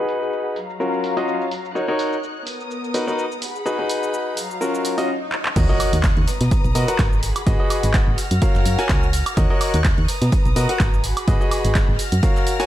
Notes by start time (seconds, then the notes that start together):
Already playing: D#4 F#4 G#4 B4 F#5 B5
0.09 open hi-hat, shaker
0.22 shaker
0.33 shaker
0.56 F#3 F5 A#5, open hi-hat, shaker
0.70 shaker
0.80 C#4 F4 F#4 A#4, shaker
0.94 shaker
1.04 open hi-hat, shaker
1.17 C#4 F4 F#4 D#5, open hi-hat, shaker
1.28 shaker
1.41 shaker
1.51 open hi-hat, shaker
1.65 shaker
1.75 D#4 F#4 A#4 C#5 F#6, shaker
1.88 D#4 F#4 A#4 C#5
1.99 open hi-hat, shaker
2.13 shaker
2.23 shaker
2.47 B3 A#4 D#6, open hi-hat, shaker
2.60 shaker
2.71 shaker
2.84 shaker
2.94 D#4 F#4 A#4 B4, open hi-hat, shaker
3.07 D#4 F#4 A#4 B4, shaker
3.19 shaker
3.32 shaker
3.42 G#4 F#5 B5, open hi-hat, shaker
3.56 shaker
3.66 D#4 F#4 G#4 B4, shaker
3.79 D#4 F#4 G#4 B4
3.90 open hi-hat, shaker
4.03 shaker
4.14 shaker
4.37 F#3 F5 A#5, open hi-hat, shaker
4.51 shaker
4.61 C#4 F4 F#4 A#4, swell, shaker
4.75 shaker
4.85 open hi-hat, shaker
4.98 C#4 F4 F#4 D#5, open hi-hat, shaker
5.32 clap
5.45 clap
5.56 D#2 F#4 A#4 C#5 D#5 C#6 F#6, kick, closed hi-hat, ride, crash, impact, shaker
5.69 F#4 A#4 C#5 D#5
5.80 open hi-hat, ride, high woodblock, shaker
5.93 D#2, closed hi-hat, shaker
6.04 kick, snare, clap, closed hi-hat, ride, shaker
6.17 D#2, ride
6.28 B4 A#5 D#6, open hi-hat, ride, shaker
6.41 B2, snare, closed hi-hat, shaker
6.51 kick, closed hi-hat, ride, shaker
6.64 B1, ride, shaker
6.75 B2 F#4 A#4 B4 D#5, open hi-hat, ride, shaker
6.88 F#4 A#4 B4 F#5, closed hi-hat, ride, shaker
6.99 G#1, kick, snare, clap, closed hi-hat, ride, shaker
7.13 shaker
7.23 F#4 G#4 B5, open hi-hat, ride, shaker
7.36 closed hi-hat, high woodblock, shaker
7.47 G#1 F#4 G#4 B4 D#5, kick, closed hi-hat, ride, shaker
7.60 F#4 G#4 B4 D#5
7.70 open hi-hat, ride, high woodblock, shaker
7.83 G#1, closed hi-hat, shaker
7.94 kick, snare, clap, closed hi-hat, ride, shaker
8.07 G#1
8.18 F6 A#6, open hi-hat, ride, shaker
8.31 F#2, closed hi-hat, shaker
8.42 F#4 A#4 C#5 F5, kick, closed hi-hat, ride, shaker
8.55 F#1, snare, shaker
8.66 F#2, open hi-hat, ride, shaker
8.79 F#4 A#4 C#5 G#5, snare, open hi-hat, shaker
8.89 C#2, kick, snare, clap, closed hi-hat, ride, shaker
9.03 shaker
9.13 open hi-hat, ride, shaker
9.26 closed hi-hat, high woodblock, shaker
9.37 D#2 F#4 A#4 C#5 D#5 C#6 F#6, kick, closed hi-hat, ride, shaker
9.50 F#4 A#4 C#5 D#5
9.61 open hi-hat, ride, high woodblock, shaker
9.74 D#2, closed hi-hat, shaker
9.84 kick, snare, clap, closed hi-hat, ride, shaker
9.98 D#2, ride
10.08 B4 A#5 D#6, open hi-hat, ride, shaker
10.22 B2, snare, closed hi-hat, shaker
10.32 kick, closed hi-hat, ride, shaker
10.45 B1, ride, shaker
10.56 B2 F#4 A#4 B4 D#5, open hi-hat, ride, shaker
10.69 F#4 A#4 B4 F#5, closed hi-hat, ride, shaker
10.80 G#1, kick, snare, clap, closed hi-hat, ride, shaker
10.94 shaker
11.04 F#4 G#4 B5, open hi-hat, ride, shaker
11.17 closed hi-hat, high woodblock, shaker
11.28 G#1 F#4 G#4 B4 D#5, kick, closed hi-hat, ride, shaker
11.41 F#4 G#4 B4 D#5, shaker
11.51 open hi-hat, ride, high woodblock, shaker
11.65 G#1, closed hi-hat, shaker
11.75 kick, snare, clap, closed hi-hat, ride, shaker
11.88 G#1
11.99 F6 A#6, open hi-hat, ride, shaker
12.12 F#2, closed hi-hat, shaker
12.23 F#4 A#4 C#5 F5, kick, closed hi-hat, ride, shaker
12.36 snare, shaker
12.47 open hi-hat, ride, shaker
12.60 F#4 A#4 C#5 G#5, snare, open hi-hat, shaker